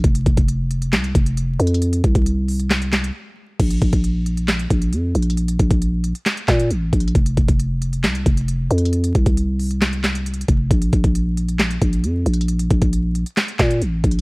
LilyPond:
<<
  \new Staff \with { instrumentName = "808-style bass" } { \clef bass \time 4/4 \key f \phrygian \tempo 4 = 135 f,,8 f,,16 f,,4~ f,,16 c,8 f,,4 f,8~ | f,8 c,16 c,2~ c,16 r4 | bes,,8 bes,,16 bes,,4.~ bes,,16 bes,,8 f,8 bes,,8~ | bes,,8 bes,,16 bes,,4 r8. bes,8 a,,8 bes,,8 |
f,,8 f,,16 f,,4~ f,,16 c,8 f,,4 f,8~ | f,8 c,16 c,2~ c,8. f,,8 | bes,,8 bes,,16 bes,,4.~ bes,,16 bes,,8 f,8 bes,,8~ | bes,,8 bes,,16 bes,,4 r8. bes,8 a,,8 bes,,8 | }
  \new DrumStaff \with { instrumentName = "Drums" } \drummode { \time 4/4 <hh bd>16 hh16 <hh bd>16 <hh bd>16 hh8 hh16 hh16 <hc hh sn>16 hh16 <hh bd>16 hh16 \tuplet 3/2 { hh16 r16 r16 hh16 hh16 hh16 } | hh16 hh16 <hh bd>16 <hh bd>16 hh8 hho16 hh16 <hc hh sn>16 hh16 <hc hh sn>16 hh16 r4 | <cymc hh bd>16 hh16 <hh bd>16 <hh bd>16 hh8 hh16 hh16 <hc hh sn>16 hh16 <hh bd>16 hh16 \tuplet 3/2 { hh16 r16 r16 hh16 hh16 hh16 } | hh16 hh16 <hh bd>16 <hh bd>16 hh8 hh16 hh16 <hc hh sn>16 hh16 <hc hh bd sn>16 hh16 \tuplet 3/2 { hh16 r16 r16 <hh bd>16 hh16 hh16 } |
<hh bd>16 hh16 <hh bd>16 <hh bd>16 hh8 hh16 hh16 <hc hh sn>16 hh16 <hh bd>16 hh16 \tuplet 3/2 { hh16 r16 r16 hh16 hh16 hh16 } | hh16 hh16 <hh bd>16 <hh bd>16 hh8 hho16 hh16 <hc hh sn>16 hh16 <hc hh sn>16 hh16 \tuplet 3/2 { hh16 hh16 hh16 <hh bd>16 r16 r16 } | <hh bd>16 hh16 <hh bd>16 <hh bd>16 hh8 hh16 hh16 <hc hh sn>16 hh16 <hh bd>16 hh16 \tuplet 3/2 { hh16 r16 r16 hh16 hh16 hh16 } | hh16 hh16 <hh bd>16 <hh bd>16 hh8 hh16 hh16 <hc hh sn>16 hh16 <hc hh bd sn>16 hh16 \tuplet 3/2 { hh16 r16 r16 <hh bd>16 hh16 r16 } | }
>>